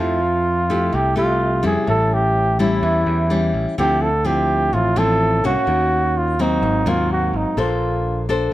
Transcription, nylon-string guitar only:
0, 0, Header, 1, 2, 480
1, 0, Start_track
1, 0, Key_signature, -1, "major"
1, 0, Tempo, 473934
1, 1912, Time_signature, 4, 2, 24, 8
1, 8642, End_track
2, 0, Start_track
2, 0, Title_t, "Nylon-string guitar"
2, 0, Program_c, 0, 24
2, 0, Note_on_c, 0, 53, 52
2, 0, Note_on_c, 0, 57, 58
2, 0, Note_on_c, 0, 64, 60
2, 0, Note_on_c, 0, 67, 58
2, 189, Note_off_c, 0, 57, 0
2, 189, Note_off_c, 0, 64, 0
2, 191, Note_off_c, 0, 67, 0
2, 706, Note_on_c, 0, 57, 56
2, 708, Note_on_c, 0, 64, 56
2, 718, Note_on_c, 0, 67, 63
2, 922, Note_off_c, 0, 53, 0
2, 937, Note_on_c, 0, 48, 49
2, 1151, Note_off_c, 0, 57, 0
2, 1151, Note_off_c, 0, 64, 0
2, 1157, Note_off_c, 0, 67, 0
2, 1172, Note_on_c, 0, 57, 58
2, 1182, Note_on_c, 0, 67, 59
2, 1623, Note_off_c, 0, 57, 0
2, 1629, Note_off_c, 0, 67, 0
2, 1648, Note_on_c, 0, 55, 59
2, 1654, Note_on_c, 0, 61, 52
2, 1658, Note_on_c, 0, 64, 63
2, 1880, Note_off_c, 0, 48, 0
2, 1897, Note_on_c, 0, 45, 53
2, 2582, Note_off_c, 0, 55, 0
2, 2585, Note_off_c, 0, 61, 0
2, 2586, Note_off_c, 0, 64, 0
2, 2625, Note_on_c, 0, 55, 54
2, 2632, Note_on_c, 0, 64, 60
2, 2633, Note_on_c, 0, 61, 55
2, 2840, Note_off_c, 0, 45, 0
2, 2863, Note_on_c, 0, 52, 50
2, 3311, Note_off_c, 0, 55, 0
2, 3313, Note_off_c, 0, 61, 0
2, 3314, Note_off_c, 0, 64, 0
2, 3343, Note_on_c, 0, 55, 53
2, 3349, Note_on_c, 0, 61, 54
2, 3356, Note_on_c, 0, 64, 53
2, 3789, Note_off_c, 0, 55, 0
2, 3793, Note_off_c, 0, 61, 0
2, 3794, Note_off_c, 0, 64, 0
2, 3803, Note_off_c, 0, 52, 0
2, 3828, Note_on_c, 0, 53, 50
2, 3829, Note_on_c, 0, 50, 55
2, 3831, Note_on_c, 0, 60, 55
2, 3838, Note_on_c, 0, 64, 58
2, 4139, Note_off_c, 0, 53, 0
2, 4141, Note_off_c, 0, 60, 0
2, 4144, Note_off_c, 0, 64, 0
2, 4300, Note_on_c, 0, 53, 50
2, 4307, Note_on_c, 0, 60, 49
2, 4309, Note_on_c, 0, 64, 55
2, 4766, Note_off_c, 0, 50, 0
2, 4789, Note_on_c, 0, 45, 55
2, 4987, Note_off_c, 0, 53, 0
2, 4991, Note_off_c, 0, 60, 0
2, 4992, Note_off_c, 0, 64, 0
2, 5024, Note_on_c, 0, 53, 64
2, 5029, Note_on_c, 0, 60, 65
2, 5033, Note_on_c, 0, 64, 62
2, 5469, Note_off_c, 0, 53, 0
2, 5472, Note_off_c, 0, 60, 0
2, 5474, Note_off_c, 0, 64, 0
2, 5509, Note_on_c, 0, 58, 59
2, 5516, Note_on_c, 0, 61, 56
2, 5518, Note_on_c, 0, 66, 61
2, 5726, Note_off_c, 0, 45, 0
2, 5742, Note_on_c, 0, 51, 55
2, 6432, Note_off_c, 0, 58, 0
2, 6433, Note_off_c, 0, 61, 0
2, 6436, Note_off_c, 0, 66, 0
2, 6471, Note_off_c, 0, 51, 0
2, 6475, Note_on_c, 0, 54, 55
2, 6478, Note_on_c, 0, 58, 54
2, 6482, Note_on_c, 0, 60, 64
2, 6712, Note_on_c, 0, 44, 52
2, 6914, Note_off_c, 0, 58, 0
2, 6915, Note_off_c, 0, 54, 0
2, 6918, Note_off_c, 0, 60, 0
2, 6948, Note_on_c, 0, 54, 52
2, 6956, Note_on_c, 0, 58, 63
2, 6957, Note_on_c, 0, 60, 70
2, 7631, Note_off_c, 0, 54, 0
2, 7633, Note_off_c, 0, 58, 0
2, 7635, Note_off_c, 0, 60, 0
2, 7647, Note_off_c, 0, 44, 0
2, 7667, Note_on_c, 0, 58, 53
2, 7672, Note_on_c, 0, 62, 48
2, 7672, Note_on_c, 0, 69, 48
2, 7680, Note_on_c, 0, 72, 58
2, 8351, Note_off_c, 0, 62, 0
2, 8353, Note_off_c, 0, 69, 0
2, 8355, Note_off_c, 0, 72, 0
2, 8394, Note_on_c, 0, 62, 57
2, 8400, Note_on_c, 0, 69, 58
2, 8408, Note_on_c, 0, 72, 63
2, 8605, Note_off_c, 0, 58, 0
2, 8642, Note_off_c, 0, 62, 0
2, 8642, Note_off_c, 0, 69, 0
2, 8642, Note_off_c, 0, 72, 0
2, 8642, End_track
0, 0, End_of_file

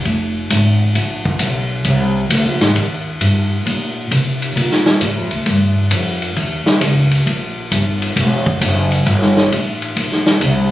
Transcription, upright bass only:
0, 0, Header, 1, 3, 480
1, 0, Start_track
1, 0, Tempo, 450450
1, 1020, Time_signature, 4, 2, 24, 8
1, 11415, End_track
2, 0, Start_track
2, 0, Title_t, "Upright bass"
2, 0, Program_c, 0, 32
2, 53, Note_on_c, 0, 29, 92
2, 522, Note_off_c, 0, 29, 0
2, 537, Note_on_c, 0, 32, 89
2, 1004, Note_off_c, 0, 32, 0
2, 1015, Note_on_c, 0, 34, 89
2, 1483, Note_off_c, 0, 34, 0
2, 1490, Note_on_c, 0, 35, 90
2, 1960, Note_off_c, 0, 35, 0
2, 1969, Note_on_c, 0, 36, 100
2, 2440, Note_off_c, 0, 36, 0
2, 2452, Note_on_c, 0, 38, 97
2, 2608, Note_off_c, 0, 38, 0
2, 2608, Note_on_c, 0, 34, 60
2, 2762, Note_off_c, 0, 34, 0
2, 2769, Note_on_c, 0, 32, 80
2, 2923, Note_off_c, 0, 32, 0
2, 2932, Note_on_c, 0, 39, 95
2, 3401, Note_off_c, 0, 39, 0
2, 3413, Note_on_c, 0, 43, 84
2, 3882, Note_off_c, 0, 43, 0
2, 3897, Note_on_c, 0, 46, 92
2, 4364, Note_off_c, 0, 46, 0
2, 4380, Note_on_c, 0, 48, 94
2, 4845, Note_off_c, 0, 48, 0
2, 4857, Note_on_c, 0, 46, 90
2, 5324, Note_off_c, 0, 46, 0
2, 5338, Note_on_c, 0, 44, 96
2, 5506, Note_off_c, 0, 44, 0
2, 5506, Note_on_c, 0, 41, 61
2, 5654, Note_off_c, 0, 41, 0
2, 5661, Note_on_c, 0, 38, 66
2, 5809, Note_off_c, 0, 38, 0
2, 5817, Note_on_c, 0, 43, 96
2, 6284, Note_off_c, 0, 43, 0
2, 6293, Note_on_c, 0, 41, 95
2, 6762, Note_off_c, 0, 41, 0
2, 6778, Note_on_c, 0, 39, 79
2, 7078, Note_off_c, 0, 39, 0
2, 7253, Note_on_c, 0, 37, 98
2, 7722, Note_off_c, 0, 37, 0
2, 7737, Note_on_c, 0, 34, 87
2, 8204, Note_off_c, 0, 34, 0
2, 8222, Note_on_c, 0, 31, 91
2, 8687, Note_off_c, 0, 31, 0
2, 8694, Note_on_c, 0, 28, 85
2, 9163, Note_off_c, 0, 28, 0
2, 9174, Note_on_c, 0, 30, 91
2, 9643, Note_off_c, 0, 30, 0
2, 9654, Note_on_c, 0, 31, 103
2, 10124, Note_off_c, 0, 31, 0
2, 10136, Note_on_c, 0, 33, 81
2, 10605, Note_off_c, 0, 33, 0
2, 10614, Note_on_c, 0, 34, 86
2, 11084, Note_off_c, 0, 34, 0
2, 11096, Note_on_c, 0, 36, 97
2, 11415, Note_off_c, 0, 36, 0
2, 11415, End_track
3, 0, Start_track
3, 0, Title_t, "Muted upright bass strokes"
3, 7107, Note_on_c, 9, 29, 41
3, 7213, Note_off_c, 9, 29, 0
3, 11415, End_track
0, 0, End_of_file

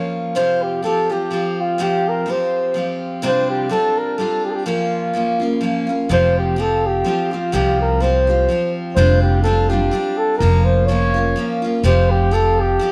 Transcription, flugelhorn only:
0, 0, Header, 1, 2, 480
1, 0, Start_track
1, 0, Key_signature, -1, "major"
1, 0, Tempo, 478851
1, 353, Time_signature, 3, 2, 24, 8
1, 12950, End_track
2, 0, Start_track
2, 0, Title_t, "Flugelhorn"
2, 0, Program_c, 0, 56
2, 0, Note_on_c, 0, 73, 75
2, 109, Note_off_c, 0, 73, 0
2, 359, Note_on_c, 0, 72, 89
2, 629, Note_on_c, 0, 67, 72
2, 644, Note_off_c, 0, 72, 0
2, 833, Note_off_c, 0, 67, 0
2, 839, Note_on_c, 0, 69, 77
2, 1113, Note_on_c, 0, 67, 66
2, 1128, Note_off_c, 0, 69, 0
2, 1608, Note_on_c, 0, 65, 72
2, 1623, Note_off_c, 0, 67, 0
2, 1825, Note_on_c, 0, 67, 79
2, 1840, Note_off_c, 0, 65, 0
2, 2092, Note_on_c, 0, 70, 71
2, 2107, Note_off_c, 0, 67, 0
2, 2312, Note_on_c, 0, 72, 77
2, 2327, Note_off_c, 0, 70, 0
2, 3037, Note_off_c, 0, 72, 0
2, 3250, Note_on_c, 0, 72, 102
2, 3489, Note_off_c, 0, 72, 0
2, 3511, Note_on_c, 0, 67, 79
2, 3705, Note_off_c, 0, 67, 0
2, 3721, Note_on_c, 0, 69, 90
2, 3987, Note_on_c, 0, 70, 76
2, 4002, Note_off_c, 0, 69, 0
2, 4192, Note_on_c, 0, 69, 64
2, 4207, Note_off_c, 0, 70, 0
2, 4463, Note_on_c, 0, 67, 70
2, 4478, Note_off_c, 0, 69, 0
2, 4514, Note_on_c, 0, 69, 58
2, 4529, Note_off_c, 0, 67, 0
2, 4559, Note_on_c, 0, 67, 67
2, 4574, Note_off_c, 0, 69, 0
2, 4664, Note_off_c, 0, 67, 0
2, 4670, Note_on_c, 0, 65, 75
2, 5592, Note_off_c, 0, 65, 0
2, 6142, Note_on_c, 0, 72, 99
2, 6375, Note_off_c, 0, 72, 0
2, 6401, Note_on_c, 0, 67, 74
2, 6620, Note_on_c, 0, 69, 83
2, 6635, Note_off_c, 0, 67, 0
2, 6883, Note_on_c, 0, 67, 81
2, 6898, Note_off_c, 0, 69, 0
2, 7339, Note_off_c, 0, 67, 0
2, 7345, Note_on_c, 0, 65, 74
2, 7555, Note_on_c, 0, 67, 87
2, 7570, Note_off_c, 0, 65, 0
2, 7818, Note_off_c, 0, 67, 0
2, 7832, Note_on_c, 0, 70, 71
2, 8035, Note_on_c, 0, 72, 86
2, 8050, Note_off_c, 0, 70, 0
2, 8778, Note_off_c, 0, 72, 0
2, 8980, Note_on_c, 0, 72, 88
2, 9231, Note_off_c, 0, 72, 0
2, 9243, Note_on_c, 0, 67, 70
2, 9449, Note_off_c, 0, 67, 0
2, 9454, Note_on_c, 0, 69, 78
2, 9715, Note_on_c, 0, 67, 69
2, 9730, Note_off_c, 0, 69, 0
2, 10197, Note_on_c, 0, 69, 78
2, 10212, Note_off_c, 0, 67, 0
2, 10393, Note_off_c, 0, 69, 0
2, 10399, Note_on_c, 0, 70, 84
2, 10677, Note_on_c, 0, 72, 78
2, 10692, Note_off_c, 0, 70, 0
2, 10888, Note_off_c, 0, 72, 0
2, 10894, Note_on_c, 0, 73, 90
2, 11607, Note_off_c, 0, 73, 0
2, 11876, Note_on_c, 0, 72, 99
2, 12137, Note_on_c, 0, 67, 85
2, 12152, Note_off_c, 0, 72, 0
2, 12360, Note_on_c, 0, 69, 86
2, 12375, Note_off_c, 0, 67, 0
2, 12630, Note_on_c, 0, 67, 81
2, 12645, Note_off_c, 0, 69, 0
2, 12950, Note_off_c, 0, 67, 0
2, 12950, End_track
0, 0, End_of_file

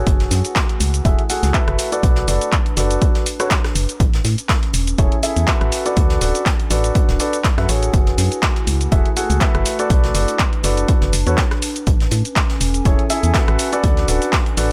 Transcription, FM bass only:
0, 0, Header, 1, 2, 480
1, 0, Start_track
1, 0, Tempo, 491803
1, 65, Time_signature, 4, 2, 24, 8
1, 14369, End_track
2, 0, Start_track
2, 0, Title_t, "FM bass"
2, 0, Program_c, 0, 39
2, 66, Note_on_c, 0, 30, 97
2, 270, Note_off_c, 0, 30, 0
2, 304, Note_on_c, 0, 42, 90
2, 414, Note_off_c, 0, 42, 0
2, 785, Note_on_c, 0, 37, 84
2, 989, Note_off_c, 0, 37, 0
2, 1025, Note_on_c, 0, 28, 91
2, 1135, Note_off_c, 0, 28, 0
2, 1396, Note_on_c, 0, 37, 82
2, 1487, Note_off_c, 0, 37, 0
2, 1636, Note_on_c, 0, 30, 91
2, 1727, Note_off_c, 0, 30, 0
2, 1984, Note_on_c, 0, 35, 95
2, 2189, Note_off_c, 0, 35, 0
2, 2225, Note_on_c, 0, 30, 94
2, 2335, Note_off_c, 0, 30, 0
2, 2705, Note_on_c, 0, 30, 85
2, 2909, Note_off_c, 0, 30, 0
2, 3665, Note_on_c, 0, 30, 87
2, 3775, Note_off_c, 0, 30, 0
2, 3905, Note_on_c, 0, 33, 96
2, 4109, Note_off_c, 0, 33, 0
2, 4145, Note_on_c, 0, 45, 91
2, 4255, Note_off_c, 0, 45, 0
2, 4624, Note_on_c, 0, 28, 84
2, 4828, Note_off_c, 0, 28, 0
2, 4865, Note_on_c, 0, 28, 92
2, 4975, Note_off_c, 0, 28, 0
2, 5237, Note_on_c, 0, 40, 80
2, 5327, Note_off_c, 0, 40, 0
2, 5478, Note_on_c, 0, 33, 89
2, 5568, Note_off_c, 0, 33, 0
2, 5826, Note_on_c, 0, 38, 96
2, 6030, Note_off_c, 0, 38, 0
2, 6065, Note_on_c, 0, 26, 90
2, 6175, Note_off_c, 0, 26, 0
2, 6545, Note_on_c, 0, 33, 85
2, 6749, Note_off_c, 0, 33, 0
2, 6917, Note_on_c, 0, 26, 103
2, 7007, Note_off_c, 0, 26, 0
2, 7397, Note_on_c, 0, 42, 82
2, 7487, Note_off_c, 0, 42, 0
2, 7504, Note_on_c, 0, 33, 88
2, 7709, Note_off_c, 0, 33, 0
2, 7746, Note_on_c, 0, 30, 98
2, 7950, Note_off_c, 0, 30, 0
2, 7984, Note_on_c, 0, 42, 94
2, 8094, Note_off_c, 0, 42, 0
2, 8464, Note_on_c, 0, 37, 81
2, 8668, Note_off_c, 0, 37, 0
2, 8706, Note_on_c, 0, 28, 91
2, 8815, Note_off_c, 0, 28, 0
2, 9076, Note_on_c, 0, 37, 82
2, 9167, Note_off_c, 0, 37, 0
2, 9316, Note_on_c, 0, 30, 91
2, 9407, Note_off_c, 0, 30, 0
2, 9665, Note_on_c, 0, 35, 97
2, 9869, Note_off_c, 0, 35, 0
2, 9904, Note_on_c, 0, 30, 93
2, 10015, Note_off_c, 0, 30, 0
2, 10384, Note_on_c, 0, 30, 84
2, 10588, Note_off_c, 0, 30, 0
2, 10757, Note_on_c, 0, 30, 103
2, 10847, Note_off_c, 0, 30, 0
2, 10865, Note_on_c, 0, 30, 91
2, 10975, Note_off_c, 0, 30, 0
2, 10996, Note_on_c, 0, 40, 82
2, 11087, Note_off_c, 0, 40, 0
2, 11586, Note_on_c, 0, 33, 98
2, 11789, Note_off_c, 0, 33, 0
2, 11825, Note_on_c, 0, 45, 95
2, 11935, Note_off_c, 0, 45, 0
2, 12306, Note_on_c, 0, 28, 84
2, 12509, Note_off_c, 0, 28, 0
2, 12545, Note_on_c, 0, 28, 89
2, 12655, Note_off_c, 0, 28, 0
2, 12917, Note_on_c, 0, 40, 79
2, 13007, Note_off_c, 0, 40, 0
2, 13157, Note_on_c, 0, 33, 93
2, 13247, Note_off_c, 0, 33, 0
2, 13506, Note_on_c, 0, 38, 99
2, 13709, Note_off_c, 0, 38, 0
2, 13745, Note_on_c, 0, 26, 92
2, 13855, Note_off_c, 0, 26, 0
2, 14225, Note_on_c, 0, 33, 85
2, 14369, Note_off_c, 0, 33, 0
2, 14369, End_track
0, 0, End_of_file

